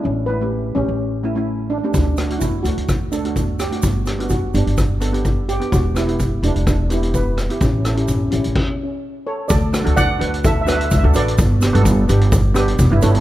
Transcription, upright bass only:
X:1
M:4/4
L:1/16
Q:"Swing 16ths" 1/4=127
K:D
V:1 name="Upright bass" clef=bass
A,,,6 A,,, A,,,8 z | D,,6 D,, D,,8 z | G,,,6 G,,, G,,,8 z | E,,,6 E,,, E,,,8 z |
A,,,6 A,,, A,,, z8 | D,,3 D,,3 D,,6 C,, D,, A,,,2 | G,,,3 G,,,3 G,,,6 E,,, G,,, G,,,2 |]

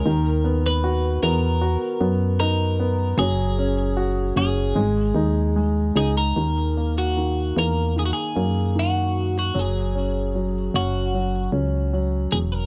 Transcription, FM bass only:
X:1
M:4/4
L:1/16
Q:1/4=76
K:D#phr
V:1 name="FM bass" clef=bass
D,,6 E,,3 z F,,6 | F,,,6 F,,,2 G,,,2 D,,4 C,,2 | D,,6 E,,3 z F,,6 | F,,,6 F,,,4 C,,4 E,,,2 |]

